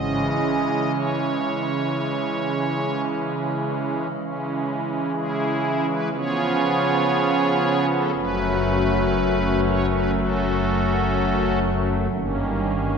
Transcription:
pipe organ
Already playing: C#3 E3 G#3 C#4 D#5
0.94 C#5
4.12 C#3 E3 G#3 C#4
5.14 C#4 E4 G#4
5.87 B4
6.13 C#3 F3 B3 C#4 F4 G#4 C#5
7.90 A4
8.15 F#1 F#2 F#3 A3 C#4 B4
9.65 C#5
9.90 B4
10.16 C#4 F#4 A4
12.11 G1 G2 D#3 A#3 C#4

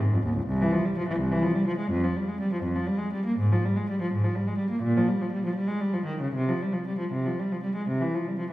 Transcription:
cello
0.01 G#2
0.13 F2
0.25 D#2
0.37 C#2
0.46 C2
0.62 E3
0.72 F3
0.85 G3
0.98 F3
1.08 E3
1.19 C2
1.31 E3
1.42 F3
1.55 G3
1.67 F3
1.78 G#3
1.91 F2
2.04 F3
2.16 G3
2.28 G#3
2.40 G3
2.53 F3
2.63 F2
2.75 F3
2.87 G3
2.98 G#3
3.13 G3
3.25 A#3
3.38 G#2
3.52 F3
3.65 G3
3.76 G#3
3.90 G3
4.01 F3
4.13 G#2
4.24 F3
4.35 G3
4.47 G#3
4.58 G3
4.70 A#3
4.82 A#2
4.97 F3
5.08 G3
5.21 F3
5.32 G3
5.45 F3
5.55 G3
5.68 G#3
5.80 G3
5.93 F3
6.05 D#3
6.21 C#3
6.34 C3
6.48 F3
6.62 G3
6.73 F3
6.87 G3
6.99 F3
7.12 C3
7.26 F3
7.39 G3
7.52 F3
7.63 G3
7.75 G#3
7.88 C3
8.01 E3
8.15 F3
8.28 G3
8.39 F3

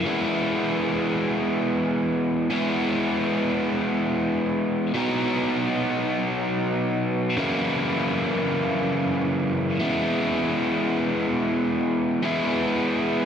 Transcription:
overdriven electric guitar
0.06 E3 G#3 B3 E4
2.50 E3 G#3 B3 E4
4.94 B2 F#3 B3 D#4
7.37 F#2 C#3 E3 A#3 E4
9.79 E3 G#3 B3 E4
12.22 E3 G#3 B3 E4

